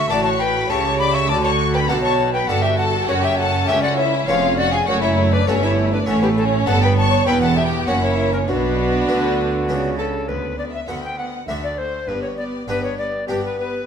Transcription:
Already playing: violin section E5
0.09 double bass section A1, harpsichord A2 A3 D4 F#4, cello section A2, viola section F#4, violin section D5 D6, recorder A5
0.24 violin section C#5 C#6, recorder A5
0.39 violin section B4 B5, recorder G5
0.69 double bass section C#2, cello section C#3, harpsichord C#3 A3 E4 G4, viola section G4, violin section C#5 C#6, recorder A5
0.99 violin section D5 D6, recorder B5
1.14 violin section E5 E6, recorder C#6
1.29 double bass section D2, cello section D3, harpsichord D3, viola section F#4, violin section D5 D6, recorder A5
1.44 violin section C#5 C#6, recorder A5
1.74 violin section B4 B5, recorder G5
1.88 double bass section B1, cello section B2, harpsichord B2 A3 D4 F#4, viola section F#4, violin section A4 A5, recorder F#5
2.04 violin section C#5 C#6, recorder A5
2.33 violin section B4 B5, recorder G5
2.47 double bass section G1, cello section G2, harpsichord G2 A3 D4 F#4, viola section F#4, violin section A4 A5, recorder F#5
2.62 violin section G4 G5, recorder E5
2.77 violin section A4 A5, recorder F#5
3.06 double bass section F#1, cello section F#2, harpsichord F#2, viola section C#4, violin section F#4 F#5, recorder C#5
3.23 violin section G4 G5, recorder E5
3.37 violin section A4 A5, recorder F#5
3.67 double bass section C#2, cello section C#2, harpsichord C#2 A3 C#4 F#4, violin section G4 G5, recorder E5
3.82 violin section F#4 F#5, recorder D5
3.97 violin section E4 E5, recorder C#5
4.27 double bass section F1, cello section F2, harpsichord F2 B3 C#4 G#4, viola section C#4, violin section F4 F5, recorder C#5
4.57 violin section F#4 F#5, recorder D5
4.72 violin section G#4 G#5, recorder F5
4.87 double bass section F#1, harpsichord F#2, cello section F#2, viola section A3, violin section F#4 F#5, recorder C#5
5.01 violin section E4 E5, recorder C#5
5.32 violin section D4 D5, recorder B4
5.47 double bass section G1, cello section G2, harpsichord G2 A3 C#4 F#4, viola section A3, violin section C#4 C#5, recorder A4
5.63 violin section E4 E5, recorder C#5
5.92 violin section D4 D5, recorder B4
6.06 double bass section A1, harpsichord A2 A3 C#4 F#4, cello section A2, viola section A3, violin section C#4 C#5, recorder A4
6.22 violin section B3 B4, recorder G4
6.37 violin section C#4 C#5, recorder A4
6.66 double bass section G1, harpsichord G2 B3 D4, cello section G2, viola section B3, violin section A4 A5, recorder F#5
6.82 violin section B4 B5, recorder G5
6.97 violin section C#5 C#6, recorder A5
7.26 double bass section E1, cello section E2, harpsichord E2 B3 E4, viola section B3, violin section B4 B5, recorder G5
7.41 violin section A4 A5, recorder F#5
7.57 violin section G4 G5, recorder E5
7.87 double bass section F#1, harpsichord F#2 A#3 C#4, cello section F#2, viola section A#3, violin section F#4 F#5, recorder C#5
8.02 violin section E4 E5, recorder C#5
8.33 violin section C#4 C#5, recorder A#4
8.47 double bass section B1, cello section B2, harpsichord B2, violin section B3 B4, viola section D4, recorder F#4
9.07 double bass section D2, cello section D3, harpsichord D3 B3 D4
9.68 double bass section C#2, cello section C#3, harpsichord C#3 B3 D4
9.99 violin section A4, recorder A4
10.28 double bass section D2, cello section D2, harpsichord D2, viola section B3, violin section F#4 B4, recorder B4
10.58 viola section B3, violin section F#4 D5, recorder D5
10.73 violin section E5, recorder E5
10.88 double bass section D2, harpsichord D2 B3 F#4, cello section D2, viola section B3, violin section F#4 F#5, recorder F#5
11.03 violin section G5, recorder G5
11.17 viola section B3, violin section F#4 F#5, recorder F#5
11.47 double bass section D2, harpsichord D2 A3 D4 F#4, cello section D2, viola section A3, violin section F#4 E5, recorder E5
11.63 violin section D5, recorder D5
11.78 viola section A3, violin section F#4 C5, recorder C5
12.08 double bass section G1, cello section G2, harpsichord G2, viola section B3, violin section G4 B4, recorder B4
12.22 recorder C#5, violin section C#5
12.37 viola section B3, violin section G4 D5, recorder D5
12.68 double bass section G1, cello section G2, harpsichord G2 B3 D4 G4, viola section B3, violin section G4 B4, recorder B4
12.83 violin section C#5, recorder C#5
12.97 viola section B3, violin section G4 D5, recorder D5
13.28 double bass section G1, cello section G2, harpsichord G2 B3 D4 G4, viola section B3, recorder G4, violin section G4
13.43 violin section B4, recorder B4
13.57 viola section B3, violin section G4 B4, recorder B4

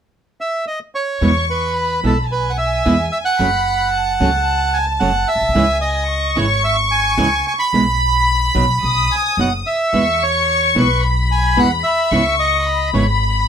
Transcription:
0.41 bandoneon E5
0.67 bandoneon D#5
0.95 bandoneon C#5
1.21 upright bass E2, nylon-string guitar B2 E3 G#3 B3 E4, violin section C#6
1.50 bandoneon B4
1.76 violin section B5
2.03 upright bass B1, nylon-string guitar B2 E3 G#3 B3 E4, bandoneon A4
2.24 violin section A5
2.31 bandoneon B4, violin section G#5
2.50 bandoneon F#5
2.58 bandoneon E5
2.85 upright bass E2, nylon-string guitar B2 E3 G#3 B3 E4
3.12 bandoneon E5
3.25 bandoneon F#5
3.39 upright bass F#1, nylon-string guitar C#3 F#3 A3 C#4 F#4, violin section B5
3.93 violin section A5
4.20 upright bass C#2, nylon-string guitar C#3 F#3 A3 C#4 F#4
4.74 bandoneon G#5
5.00 upright bass F#1, nylon-string guitar C#3 F#3 A3 C#4 F#4, bandoneon F#5
5.28 bandoneon E5
5.35 upright bass A#1
5.41 upright bass B1
5.48 upright bass C2
5.55 upright bass C#2, nylon-string guitar C#3 E3 G#3 C#4 E4, violin section G#5
5.81 bandoneon D#5
6.09 violin section C#6
6.36 upright bass G#1, nylon-string guitar C#3 E3 G#3 C#4 E4, bandoneon C#5
6.64 bandoneon E5
6.91 bandoneon G#5
7.17 upright bass C#2, nylon-string guitar C#3 E3 G#3 C#4 E4
7.48 bandoneon G#5
7.59 bandoneon B5
7.72 upright bass B1, nylon-string guitar B2 E3 G#3 B3 E4, violin section B5
8.55 upright bass B1, nylon-string guitar B2 F#3 B3 D#4 F#4
8.83 upright bass B1, violin section D#6
9.12 bandoneon G#5
9.37 upright bass F#1, nylon-string guitar B2 F#3 B3 D#4 F#4, bandoneon F#5
9.67 bandoneon E5
9.92 upright bass E2, nylon-string guitar B2 E3 G#3 B3 E4, violin section C#6
10.23 bandoneon C#5
10.75 upright bass B1, nylon-string guitar B2 E3 G#3 B3 E4, bandoneon B4
11.02 violin section B5
11.32 bandoneon G#5
11.57 upright bass E2, nylon-string guitar B2 E3 G#3 B3 E4, bandoneon F#5
11.84 bandoneon E5
12.11 upright bass C#2, nylon-string guitar C#3 E3 G#3 B3 E4, violin section C#6
12.39 bandoneon D#5
12.65 violin section B5
12.93 upright bass G#1, nylon-string guitar C#3 E3 G#3 B3 E4, bandoneon C#5

